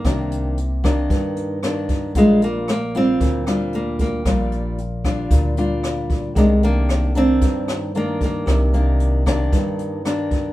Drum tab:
HH |xxxxxxxx|xxxxxxxx|xxxxxxxx|xxxxxxxx|
SD |r--r--r-|--r--r--|r--r--r-|--r--r--|
BD |o--oo--o|o---o--o|o--oo--o|o---o--o|

HH |xxxxxxxx|
SD |r--r--r-|
BD |o--oo--o|